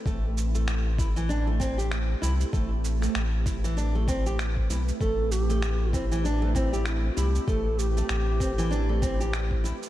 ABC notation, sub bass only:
X:1
M:4/4
L:1/8
Q:"Swing 16ths" 1/4=97
K:Am
V:1 name="Sub bass" clef=bass
A,,,6- A,,, C,, | A,,,2 A,,,4- A,,, B,,, | A,,,6- A,,, C,, | A,,,2 A,,,4- A,,, z |]